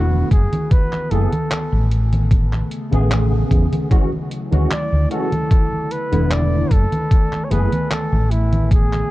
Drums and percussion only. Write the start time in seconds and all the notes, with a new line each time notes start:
0.13 high conga
0.31 kick, closed hi-hat
0.53 closed hi-hat, high conga
0.71 kick, closed hi-hat, high conga
0.93 clap, high conga
1.11 closed hi-hat
1.33 closed hi-hat, high conga
1.51 clap, closed hi-hat, high conga
1.73 high conga
1.91 closed hi-hat
2.13 closed hi-hat, high conga
2.31 kick, closed hi-hat, high conga
2.53 clap, high conga
2.71 closed hi-hat
2.93 closed hi-hat, high conga
3.11 clap, closed hi-hat, high conga
3.33 high conga
3.51 kick, closed hi-hat
3.73 closed hi-hat, high conga
3.91 kick, closed hi-hat, high conga
4.12 high conga
4.31 closed hi-hat
4.52 closed hi-hat, high conga
4.71 clap, closed hi-hat, high conga
4.93 high conga
5.11 closed hi-hat
5.32 closed hi-hat, high conga
5.51 kick, closed hi-hat, high conga
5.73 high conga
5.91 closed hi-hat
6.13 closed hi-hat, high conga
6.31 clap, closed hi-hat, high conga
6.53 high conga
6.71 kick, closed hi-hat
6.92 closed hi-hat, high conga
7.11 kick, closed hi-hat, high conga
7.33 clap, high conga
7.51 closed hi-hat
7.72 closed hi-hat, high conga
7.91 clap, closed hi-hat, high conga
8.13 high conga
8.31 closed hi-hat
8.53 closed hi-hat, high conga
8.71 kick, closed hi-hat, high conga
8.93 clap, closed hi-hat, high conga